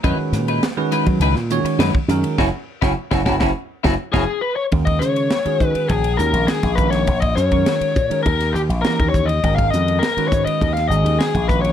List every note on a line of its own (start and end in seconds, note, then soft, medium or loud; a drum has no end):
0.03 0.17 F#2 medium
0.03 0.61 D#3 medium
0.03 0.61 G#3 medium
0.03 0.18 G#3 medium
0.03 0.61 C#4 medium
0.03 0.18 D#4 medium
0.03 0.18 E4 medium
0.03 0.61 F#4 medium
0.03 0.61 B4 loud
0.03 0.17 B4 medium
0.03 kick loud
0.03 hi-hat pedal medium
0.03 ride medium
0.18 muted slap bass stroke soft
0.18 muted clean electric guitar stroke soft
0.32 0.59 A#2 medium
0.32 muted clean electric guitar stroke soft
0.32 snare soft
0.32 hi-hat pedal medium
0.32 ride medium
0.48 0.63 D#4 soft
0.48 0.63 E4 soft
0.48 0.63 B4 medium
0.48 ride medium
0.63 muted clean electric guitar stroke soft
0.63 snare loud
0.63 hi-hat pedal medium
0.63 ride medium
0.77 1.34 D#3 medium
0.77 1.34 G#3 medium
0.77 1.34 C#4 medium
0.77 1.34 F#4 medium
0.77 1.34 B4 medium
0.92 1.06 G#3 medium
0.92 1.07 D#4 medium
0.92 1.06 E4 medium
0.92 1.06 B4 medium
0.92 hi-hat pedal medium
0.92 ride medium
1.06 1.19 F#3 medium
1.06 muted clean electric guitar stroke soft
1.06 kick medium
1.06 ride medium
1.19 1.33 C#2 medium
1.19 1.36 G#3 medium
1.19 1.35 D#4 medium
1.19 1.35 E4 medium
1.19 1.35 B4 medium
1.19 hi-hat pedal medium
1.19 ride medium
1.34 1.61 A#2 medium
1.34 muted clean electric guitar stroke medium
1.34 snare soft
1.50 1.96 D#3 medium
1.50 1.96 G#3 medium
1.50 1.96 C#4 medium
1.50 1.97 F#4 medium
1.50 1.97 C#5 loud
1.50 hi-hat pedal medium
1.50 ride medium
1.64 muted slap bass stroke soft
1.64 muted clean electric guitar stroke soft
1.64 ride medium
1.79 1.92 F#2 medium
1.79 1.94 G#3 medium
1.79 1.93 D#4 medium
1.79 1.93 E4 medium
1.79 1.92 B4 medium
1.79 snare loud
1.79 hi-hat pedal medium
1.79 ride medium
1.94 muted clean electric guitar stroke soft
1.94 muted slap bass stroke soft
1.94 kick medium
2.08 2.22 F#2 medium
2.08 2.39 D#3 medium
2.08 2.39 G#3 medium
2.08 2.37 C#4 medium
2.08 2.37 F#4 medium
2.08 2.39 A#4 medium
2.08 muted clean electric guitar stroke soft
2.08 hi-hat pedal medium
2.08 ride medium
2.24 ride medium
2.38 2.49 F#1 loud
2.38 2.48 C#4 loud
2.38 2.48 C#4 medium
2.38 2.48 E4 medium
2.38 2.48 F#4 medium
2.38 kick medium
2.38 snare medium
2.82 2.93 F#1 medium
2.82 2.92 C#4 medium
2.82 2.91 E4 loud
2.82 2.92 E4 medium
2.82 2.91 F#4 medium
2.82 2.92 F#4 medium
2.82 kick medium
2.82 snare medium
3.11 3.22 F#1 medium
3.11 3.21 C#4 medium
3.11 3.21 E4 medium
3.11 3.21 F#4 medium
3.11 kick medium
3.11 snare medium
3.26 3.37 F#1 medium
3.26 3.35 C#4 medium
3.26 3.36 C#4 medium
3.26 3.35 E4 loud
3.26 3.36 E4 medium
3.26 3.35 F#4 medium
3.26 3.36 F#4 medium
3.26 kick medium
3.26 snare medium
3.39 3.52 F#1 medium
3.39 3.50 C#4 medium
3.39 3.50 E4 loud
3.39 3.51 E4 medium
3.39 3.50 F#4 medium
3.39 3.51 F#4 medium
3.39 kick medium
3.39 snare medium
3.83 3.95 F#1 medium
3.83 3.94 C#4 medium
3.83 3.94 E4 loud
3.83 3.94 E4 medium
3.83 3.94 F#4 medium
3.83 kick medium
3.83 snare medium
4.13 4.25 F#1 medium
4.13 4.23 C#4 medium
4.13 4.23 E4 medium
4.13 4.23 F#4 loud
4.13 4.23 F#4 medium
4.13 4.41 G#4 medium
4.13 kick medium
4.13 snare medium
4.41 4.56 B4 medium
4.56 4.64 C#5 medium
4.71 4.99 D#2 medium
4.71 5.29 D#3 medium
4.71 5.29 G#3 medium
4.71 5.29 C#4 medium
4.71 5.29 F#4 medium
4.71 5.30 A#4 medium
4.71 kick medium
4.71 ride medium
4.85 5.02 D#5 medium
4.85 kick medium
4.85 ride medium
4.99 5.28 C#3 medium
4.99 5.65 C#5 medium
4.99 hi-hat pedal medium
5.16 ride soft
5.30 snare loud
5.30 ride medium
5.45 6.02 D#3 medium
5.45 6.03 G#3 medium
5.45 6.03 C#4 medium
5.45 6.03 F#4 medium
5.45 6.03 G#4 medium
5.45 muted slap bass stroke soft
5.45 ride medium
5.60 5.74 D#3 medium
5.60 kick medium
5.60 hi-hat pedal medium
5.65 5.91 B4 medium
5.75 muted slap bass stroke soft
5.75 ride medium
5.88 6.16 A#1 medium
5.88 6.19 G#4 medium
5.88 kick medium
5.88 ride medium
6.04 ride medium
6.17 6.32 D#2 medium
6.17 6.65 D#3 medium
6.17 6.65 G#3 medium
6.17 6.65 C#4 medium
6.17 6.65 F#4 medium
6.17 6.49 A#4 medium
6.17 6.65 A#4 medium
6.17 hi-hat pedal medium
6.33 6.47 A#1 medium
6.33 ride medium
6.47 6.78 G#4 medium
6.47 muted slap bass stroke soft
6.47 snare loud
6.47 ride medium
6.63 7.03 A#1 medium
6.63 kick medium
6.63 snare soft
6.63 ride medium
6.75 7.08 D#3 medium
6.75 7.08 G#3 medium
6.75 7.08 C#4 medium
6.75 7.08 F#4 medium
6.75 7.08 A#4 medium
6.75 6.90 B4 medium
6.75 kick medium
6.75 hi-hat pedal medium
6.90 7.22 C#5 medium
6.90 snare soft
6.90 ride medium
7.07 7.34 A#1 medium
7.07 kick medium
7.07 ride medium
7.20 7.36 D#5 medium
7.20 kick medium
7.20 ride medium
7.35 7.63 F#2 medium
7.35 8.22 C#5 medium
7.35 snare soft
7.35 hi-hat pedal medium
7.51 7.97 D#3 medium
7.51 7.97 G#3 medium
7.51 7.98 C#4 medium
7.51 7.98 F#4 medium
7.51 7.98 A#4 medium
7.51 kick medium
7.51 ride medium
7.66 snare medium
7.66 ride medium
7.81 muted slap bass stroke soft
7.81 ride medium
7.96 8.09 A#2 medium
7.96 kick medium
7.96 hi-hat pedal medium
8.10 8.25 D#3 medium
8.10 8.25 G#3 medium
8.10 8.26 C#4 medium
8.10 8.26 F#4 medium
8.10 8.26 A#4 medium
8.10 muted slap bass stroke soft
8.10 ride medium
8.23 8.52 D#2 medium
8.23 8.54 A#4 medium
8.23 kick medium
8.23 ride medium
8.40 snare soft
8.40 ride medium
8.53 8.68 D#2 medium
8.53 8.61 G4 medium
8.53 hi-hat pedal medium
8.69 8.82 A#1 medium
8.69 ride medium
8.82 9.30 E3 medium
8.82 9.30 A#3 medium
8.82 9.30 C#4 medium
8.82 9.30 D#4 medium
8.82 9.30 G4 medium
8.82 9.09 A#4 medium
8.82 muted slap bass stroke soft
8.82 snare loud
8.82 ride medium
8.99 9.39 D#2 medium
8.99 kick medium
8.99 ride soft
9.09 9.27 C#5 medium
9.14 kick medium
9.14 hi-hat pedal medium
9.25 9.54 D#5 medium
9.25 ride medium
9.43 9.70 G#1 medium
9.43 10.01 D#3 medium
9.43 10.01 G#3 medium
9.43 10.01 C#4 medium
9.43 10.01 F#4 medium
9.43 10.01 A#4 medium
9.43 kick medium
9.43 ride medium
9.56 9.70 F5 medium
9.56 kick medium
9.56 ride medium
9.70 10.00 F2 medium
9.70 10.02 D#5 medium
9.70 hi-hat pedal medium
9.88 ride soft
9.99 10.28 A#4 medium
9.99 ride medium
10.03 snare medium
10.17 10.74 D#3 medium
10.17 10.74 G#3 medium
10.17 10.74 C#4 medium
10.17 10.74 F#4 medium
10.17 10.75 B4 medium
10.17 muted slap bass stroke soft
10.17 ride medium
10.28 10.45 G#2 medium
10.28 10.43 C#5 medium
10.28 kick medium
10.28 hi-hat pedal medium
10.45 10.73 D#5 medium
10.45 muted slap bass stroke soft
10.45 ride medium
10.61 10.88 D#2 medium
10.61 kick medium
10.61 ride medium
10.74 10.88 F5 medium
10.74 snare soft
10.74 ride medium
10.88 11.03 G#1 medium
10.88 11.36 D#3 medium
10.88 11.36 G#3 medium
10.88 11.36 C#4 medium
10.88 11.36 F#4 medium
10.88 11.36 G#4 medium
10.88 11.20 D#5 medium
10.88 hi-hat pedal medium
11.04 11.18 D#2 medium
11.04 ride medium
11.19 11.49 G#4 medium
11.19 muted slap bass stroke soft
11.19 snare loud
11.19 ride medium
11.35 11.72 A#1 medium
11.35 kick medium
11.35 ride medium
11.48 11.72 D#3 medium
11.48 11.72 G#3 medium
11.48 11.72 C#4 medium
11.48 11.72 F#4 medium
11.48 11.61 B4 medium
11.48 11.72 B4 medium
11.48 kick medium
11.48 hi-hat pedal medium
11.62 11.72 C#5 medium
11.62 ride medium